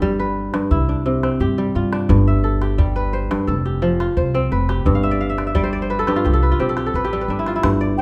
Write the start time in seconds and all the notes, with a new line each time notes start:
Already playing: G1 G2 C4 G4 A4 B4
0.02 G3, calabash thump
0.19 B4
0.54 G2, calabash click
0.71 C2 E4, calabash thump
0.89 D4
1.06 C3
1.23 C4, calabash click
1.40 G2 G4, calabash thump
1.58 G3
1.75 G2 F4, calabash click
1.93 D4, calabash click
2.09 G1 G2, calabash thump
2.27 E5
2.44 A4
2.62 G4, calabash click
2.78 G3, calabash thump
2.96 B4
3.13 C5
3.31 G2, calabash click
3.47 F1 A4, calabash thump
3.65 G4
3.82 F3
4.00 F4, calabash click
4.17 C2 C5, calabash thump
4.34 C4
4.52 F1 B4, calabash click
4.69 G4, calabash click
4.86 G1 G2, calabash thump
4.95 F5
5.03 E5, calabash click
5.11 D5
5.21 F5
5.30 E5
5.38 D5, calabash click
5.47 E5
5.55 G3 D5, calabash thump
5.64 C5
5.73 D5
5.82 C5
5.90 B4, calabash click
5.99 A4
6.07 G2 G4, calabash click
6.16 F4
6.25 C2 G4, calabash thump
6.33 A4
6.43 B4
6.52 F4
6.59 B1 C4 G4, calabash click
6.69 A4
6.77 G4, calabash click
6.86 A4
6.94 A1 B4, calabash thump
7.04 G4
7.13 G3 A4
7.21 B4
7.28 G1 D4
7.39 E4
7.46 F4, calabash click
7.56 E4
7.63 G1 G2, calabash thump, calabash click
7.81 D5
7.98 C5 G5